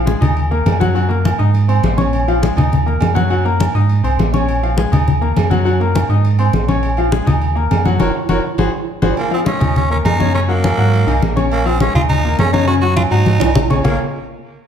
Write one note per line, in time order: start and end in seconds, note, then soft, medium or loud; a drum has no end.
0.00 0.16 A#1 loud
0.05 0.18 G#3 medium
0.05 0.18 G#4 medium
0.05 0.19 G#5 medium
0.05 high conga loud
0.05 low timbale medium
0.21 0.62 D#2 loud
0.21 0.45 D#4 medium
0.21 0.45 D#5 medium
0.21 0.46 D#6 medium
0.21 high conga soft
0.21 low conga medium
0.21 low agogo loud
0.37 high conga soft
0.37 low agogo medium
0.51 0.75 A#3 medium
0.51 0.75 A#4 medium
0.51 0.75 A#5 medium
0.51 high conga soft
0.65 1.33 F#2 loud
0.65 high conga medium
0.65 low timbale medium
0.65 low agogo loud
0.80 0.92 F#3 medium
0.80 0.92 F#4 medium
0.80 0.93 F#5 medium
0.80 high conga medium
0.95 1.07 F#3 medium
0.95 1.07 F#4 medium
0.95 1.07 F#5 medium
0.95 high conga soft
0.95 low agogo medium
1.09 1.33 A#3 medium
1.09 1.33 A#4 medium
1.09 1.34 A#5 medium
1.09 high conga soft
1.25 high conga loud
1.25 low timbale medium
1.25 low agogo loud
1.38 1.80 G#2 loud
1.38 1.63 D#4 medium
1.38 1.63 D#5 medium
1.38 1.63 D#6 medium
1.38 high conga soft
1.54 high conga soft
1.54 low agogo medium
1.68 1.92 C4 medium
1.68 1.92 C5 medium
1.68 1.93 C6 medium
1.68 high conga soft
1.68 low agogo loud
1.83 2.51 A#1 loud
1.83 high conga medium
1.83 low timbale medium
1.97 2.22 C#4 medium
1.97 2.22 C#5 medium
1.97 2.22 C#6 medium
1.97 high conga loud
1.97 low agogo medium
2.13 high conga soft
2.13 low agogo loud
2.28 2.40 F3 medium
2.28 2.40 F4 medium
2.28 2.40 F5 medium
2.28 high conga soft
2.28 low agogo medium
2.42 2.54 G#3 medium
2.42 2.54 G#4 medium
2.42 2.54 G#5 medium
2.42 high conga loud
2.42 low timbale medium
2.56 2.98 D#2 loud
2.56 2.81 D#4 medium
2.56 2.81 D#5 medium
2.56 2.81 D#6 medium
2.56 high conga soft
2.56 low conga medium
2.56 low agogo loud
2.72 high conga soft
2.72 low conga medium
2.72 low agogo medium
2.86 3.10 A#3 medium
2.86 3.10 A#4 medium
2.86 3.11 A#5 medium
2.86 high conga soft
3.01 3.69 F#2 medium
3.01 high conga loud
3.01 low timbale medium
3.01 low agogo loud
3.15 3.27 F#3 medium
3.15 3.27 F#4 loud
3.15 3.27 F#5 loud
3.15 high conga medium
3.30 3.42 F#3 medium
3.30 3.42 F#4 medium
3.30 3.43 F#5 medium
3.30 high conga soft
3.30 low agogo medium
3.45 3.69 A#3 medium
3.45 3.69 A#4 medium
3.45 3.70 A#5 medium
3.45 high conga soft
3.60 high conga loud
3.60 low timbale medium
3.60 low agogo loud
3.74 4.02 G#2 loud
3.74 3.99 D#4 medium
3.74 3.99 D#5 medium
3.74 3.99 D#6 medium
3.74 high conga soft
3.89 high conga soft
3.89 low agogo medium
4.03 4.17 C2 medium
4.03 4.28 C4 medium
4.03 4.28 C5 medium
4.03 4.28 C6 medium
4.03 high conga soft
4.03 low agogo loud
4.18 4.86 A#1 loud
4.18 high conga loud
4.18 low timbale medium
4.33 4.57 C#4 medium
4.33 4.58 C#5 medium
4.33 4.58 C#6 medium
4.33 high conga medium
4.33 low agogo loud
4.48 high conga soft
4.48 low agogo loud
4.63 4.75 F3 medium
4.63 4.75 F4 medium
4.63 4.75 F5 medium
4.63 high conga soft
4.63 low agogo medium
4.76 4.89 G#3 medium
4.76 4.89 G#4 medium
4.76 4.90 G#5 medium
4.76 high conga loud
4.76 low timbale medium
4.91 5.33 D#2 loud
4.91 5.16 D#4 medium
4.91 5.16 D#5 medium
4.91 5.16 D#6 medium
4.91 high conga soft
4.91 low conga medium
4.91 low agogo loud
5.08 high conga soft
5.08 low conga medium
5.08 low agogo medium
5.21 5.45 A#3 medium
5.21 5.46 A#4 medium
5.21 5.46 A#5 medium
5.21 high conga soft
5.36 6.04 F#2 loud
5.36 high conga medium
5.36 low timbale medium
5.36 low agogo loud
5.50 5.63 F#3 medium
5.50 5.63 F#4 medium
5.50 5.63 F#5 medium
5.50 high conga medium
5.65 5.77 F#3 medium
5.65 5.77 F#4 medium
5.65 5.77 F#5 medium
5.65 high conga soft
5.65 low agogo medium
5.80 6.04 A#3 medium
5.80 6.04 A#4 medium
5.80 6.05 A#5 medium
5.80 high conga soft
5.95 high conga loud
5.95 low timbale medium
5.95 low agogo loud
6.09 6.50 G#2 loud
6.09 6.33 D#4 medium
6.09 6.34 D#5 medium
6.09 6.34 D#6 medium
6.09 high conga soft
6.25 high conga soft
6.25 low agogo medium
6.39 6.63 C4 medium
6.39 6.63 C5 medium
6.39 6.63 C6 medium
6.39 high conga soft
6.39 low agogo loud
6.53 7.21 A#1 loud
6.53 high conga medium
6.53 low timbale loud
6.68 6.92 C#4 medium
6.68 6.92 C#5 medium
6.68 6.92 C#6 medium
6.68 high conga loud
6.68 low agogo medium
6.83 high conga soft
6.83 low agogo loud
6.97 7.10 F3 medium
6.97 7.10 F4 medium
6.97 7.10 F5 medium
6.97 high conga soft
6.97 low agogo medium
7.12 7.24 G#3 medium
7.12 7.24 G#4 medium
7.12 7.24 G#5 medium
7.12 high conga loud
7.12 low timbale medium
7.26 7.67 D#2 loud
7.26 7.50 D#4 medium
7.26 7.51 D#5 medium
7.26 7.51 D#6 medium
7.26 high conga soft
7.26 low conga medium
7.26 low agogo loud
7.41 high conga soft
7.41 low agogo loud
7.55 7.80 A#3 medium
7.55 7.80 A#4 medium
7.55 7.80 A#5 medium
7.55 high conga soft
7.70 7.98 F#2 loud
7.70 high conga medium
7.70 low timbale medium
7.70 low agogo loud
7.85 7.97 F#3 medium
7.85 7.97 F#4 medium
7.85 7.97 F#5 loud
7.85 high conga medium
8.00 8.11 F#1 loud
8.00 8.09 F#4 loud
8.00 8.09 A#4 loud
8.00 8.09 C#5 loud
8.00 high conga loud
8.00 high timbale loud
8.29 8.40 F#1 loud
8.29 8.39 F#4 loud
8.29 8.39 A#4 loud
8.29 8.39 C#5 medium
8.29 high conga loud
8.29 high timbale loud
8.58 8.69 G#1 medium
8.58 8.68 F#4 medium
8.58 8.68 G#4 loud
8.58 8.68 C5 medium
8.58 high conga loud
8.58 high timbale loud
9.02 9.13 G#1 loud
9.02 9.12 F#4 loud
9.02 9.12 G#4 loud
9.02 9.12 C5 loud
9.02 high conga loud
9.02 high timbale loud
9.17 9.31 A#3 medium
9.17 high conga soft
9.17 low agogo loud
9.31 9.43 F3 medium
9.31 9.40 C4 medium
9.31 9.43 F4 medium
9.31 9.44 F5 medium
9.31 high conga soft
9.31 low agogo medium
9.44 9.57 G#3 medium
9.44 9.74 C#4 medium
9.44 9.58 G#4 medium
9.44 9.58 G#5 medium
9.44 high conga medium
9.44 low timbale medium
9.60 10.02 D#2 loud
9.60 9.84 D#4 medium
9.60 9.85 D#5 medium
9.60 9.85 D#6 medium
9.60 high conga soft
9.60 low conga medium
9.60 low agogo loud
9.75 9.90 C#4 medium
9.75 high conga soft
9.75 low conga medium
9.75 low agogo medium
9.90 10.14 A#3 medium
9.90 9.98 C#4 medium
9.90 10.14 A#4 medium
9.90 10.14 A#5 medium
9.90 high conga soft
10.04 10.72 F#2 loud
10.04 10.32 D#4 loud
10.04 high conga loud
10.04 low timbale loud
10.04 low agogo loud
10.19 10.32 C#3 medium
10.19 10.32 C#4 medium
10.19 10.32 C#5 medium
10.19 high conga medium
10.34 10.46 C#3 medium
10.34 10.46 C#4 medium
10.34 10.41 C#4 medium
10.34 10.47 C#5 medium
10.34 high conga soft
10.34 low agogo medium
10.48 10.72 F#3 medium
10.48 11.33 A#3 loud
10.48 10.73 F#4 medium
10.48 10.73 F#5 medium
10.48 high conga soft
10.64 high conga loud
10.64 low timbale medium
10.64 low agogo loud
10.78 11.05 G#2 loud
10.78 11.02 F#3 medium
10.78 11.02 F#4 medium
10.78 11.02 F#5 medium
10.78 high conga soft
10.93 high conga soft
10.93 low agogo medium
11.06 11.20 C2 medium
11.06 11.31 D#3 medium
11.06 11.31 D#4 medium
11.06 11.31 D#5 medium
11.06 high conga soft
11.06 low agogo loud
11.21 11.89 A#1 loud
11.21 high conga medium
11.21 low timbale medium
11.36 11.60 C#4 medium
11.36 11.60 C#5 medium
11.36 11.60 C#6 medium
11.36 high conga medium
11.36 low agogo medium
11.52 11.67 A#3 loud
11.52 high conga soft
11.52 low agogo loud
11.65 11.77 F3 medium
11.65 11.80 C4 loud
11.65 11.78 F4 medium
11.65 11.78 F5 medium
11.65 high conga soft
11.65 low agogo medium
11.80 11.92 G#3 medium
11.80 11.94 C#4 medium
11.80 11.93 G#4 medium
11.80 11.93 G#5 medium
11.80 high conga loud
11.80 low timbale medium
11.94 12.35 D#2 loud
11.94 12.19 D#4 medium
11.94 12.02 F4 loud
11.94 12.19 D#5 medium
11.94 12.19 D#6 medium
11.94 high conga soft
11.94 low conga medium
11.94 low agogo loud
12.09 12.36 D#4 loud
12.09 high conga soft
12.09 low conga medium
12.09 low agogo medium
12.24 12.48 A#3 medium
12.24 12.48 A#4 medium
12.24 12.49 A#5 medium
12.24 high conga soft
12.38 13.06 F#2 loud
12.38 12.52 C#4 loud
12.38 high conga loud
12.38 low timbale medium
12.38 low agogo loud
12.53 12.65 C#3 medium
12.53 12.65 C#4 loud
12.53 12.67 D#4 loud
12.53 12.65 C#5 loud
12.53 high conga medium
12.67 12.80 C#3 medium
12.67 12.80 C#4 medium
12.67 12.74 F#4 loud
12.67 12.80 C#5 medium
12.67 high conga soft
12.67 low agogo medium
12.82 13.07 F#3 medium
12.82 12.96 F#4 loud
12.82 13.07 F#4 medium
12.82 13.07 F#5 medium
12.82 high conga soft
12.96 13.03 F4 loud
12.96 high conga loud
12.96 low timbale medium
12.96 low agogo loud
13.11 13.39 G#2 loud
13.11 13.35 F#3 medium
13.11 13.66 D#4 loud
13.11 13.35 F#4 medium
13.11 13.35 F#5 medium
13.11 high conga soft
13.26 high conga medium
13.26 low agogo medium
13.40 13.54 C2 medium
13.40 13.65 D#3 medium
13.40 13.65 D#4 medium
13.40 13.65 D#5 medium
13.40 high conga loud
13.40 high timbale loud
13.40 low agogo loud
13.55 13.81 A#1 medium
13.55 low conga loud
13.70 13.82 C#4 medium
13.70 13.82 C#5 medium
13.70 13.82 C#6 medium
13.70 low conga loud
13.70 low timbale medium
13.70 low agogo medium
13.84 13.98 A#1 loud
13.84 13.98 A#3 medium
13.84 13.98 F4 medium
13.84 13.98 G#4 medium
13.84 13.99 A#4 medium
13.84 13.98 C#5 medium
13.84 13.99 F5 loud
13.84 low conga loud
13.84 low timbale loud